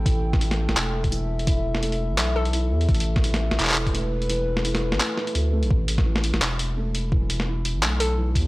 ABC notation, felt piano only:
X:1
M:4/4
L:1/8
Q:"Swing 16ths" 1/4=170
K:C
V:1 name="Felt piano"
E, z E2 A, z E, z | E2 A, z E, z E2 | A, z E, z E2 A, z | E, z E2 A, E A, A, |
A, z E, z E2 A, z | E, z E2 A, z E, z |]